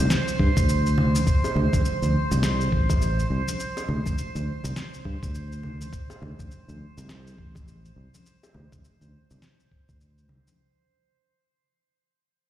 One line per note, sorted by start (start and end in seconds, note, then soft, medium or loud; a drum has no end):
0.00 10.60 C5 medium
0.10 snare medium
0.10 cabasa medium
0.28 cabasa soft
0.39 0.50 G2 medium
0.39 kick medium
0.39 high conga soft
0.57 1.19 D2 medium
0.57 kick loud
0.57 cabasa medium
0.69 cabasa medium
0.86 cabasa soft
0.98 low conga medium
1.15 high conga medium
1.15 cabasa medium
1.27 kick loud
1.27 cabasa medium
1.44 high bongo medium
1.44 cabasa soft
1.55 1.66 D2 medium
1.55 low conga medium
1.73 1.80 D2 medium
1.73 kick medium
1.73 high conga medium
1.73 cabasa medium
1.85 cabasa medium
2.02 2.18 D2 medium
2.02 high conga soft
2.02 cabasa soft
2.31 2.72 C2 loud
2.31 low conga medium
2.31 cabasa medium
2.43 snare medium
2.43 high bongo soft
2.43 cabasa medium
2.61 cabasa soft
2.72 3.23 A1 medium
2.72 kick medium
2.89 kick medium
2.89 high bongo soft
2.89 high conga medium
2.89 cabasa medium
3.02 cabasa medium
3.19 cabasa soft
3.30 3.41 C2 medium
3.48 high conga medium
3.48 cabasa medium
3.60 cabasa soft
3.77 high bongo medium
3.77 cabasa soft
3.89 3.99 D2 medium
3.89 low conga medium
4.06 4.13 D2 medium
4.06 kick medium
4.06 high conga medium
4.06 cabasa medium
4.18 cabasa soft
4.35 4.50 D2 medium
4.35 high conga soft
4.35 cabasa soft
4.64 4.71 C2 loud
4.64 low conga medium
4.64 cabasa medium
4.76 snare medium
4.76 cabasa medium
4.94 cabasa soft
5.05 5.16 G2 medium
5.05 kick medium
5.05 high conga soft
5.23 5.85 D2 medium
5.23 kick medium
5.23 cabasa medium
5.35 cabasa soft
5.52 cabasa soft
5.63 low conga medium
5.81 high conga medium
5.81 cabasa medium
5.93 kick loud
5.93 cabasa medium
6.10 high bongo medium
6.10 cabasa soft
6.22 6.32 D2 medium
6.22 low conga medium
6.39 6.46 D2 medium
6.39 kick medium
6.39 high conga medium
6.39 cabasa medium
6.51 cabasa soft
6.68 6.84 D2 medium
6.68 high conga medium
6.68 cabasa soft
6.98 7.38 C2 medium
6.98 low conga medium
6.98 cabasa medium
7.09 snare medium
7.09 high bongo medium
7.09 cabasa soft
7.27 cabasa soft
7.38 7.89 A1 medium
7.38 kick medium
7.55 kick medium
7.55 high bongo soft
7.55 high conga medium
7.55 cabasa medium
7.68 cabasa soft
7.85 cabasa soft
7.96 8.07 C2 medium
8.14 high conga medium
8.14 cabasa medium
8.26 cabasa soft
8.43 high bongo medium
8.43 cabasa soft
8.54 8.65 D2 medium
8.54 low conga medium
8.72 8.79 D2 medium
8.72 kick medium
8.72 high bongo soft
8.72 high conga medium
8.72 cabasa medium
8.84 cabasa soft
9.01 9.17 D2 medium
9.01 high conga medium
9.01 cabasa soft
9.30 9.38 C2 loud
9.30 low conga medium
9.30 cabasa medium
9.42 snare medium
9.42 cabasa soft
9.60 cabasa soft
9.71 kick medium
9.71 high conga soft
9.89 10.29 D2 medium
9.89 kick medium
9.89 cabasa medium
10.01 cabasa soft
10.18 cabasa soft
10.29 10.40 C2 medium
10.29 low conga medium
10.47 high conga medium
10.47 cabasa medium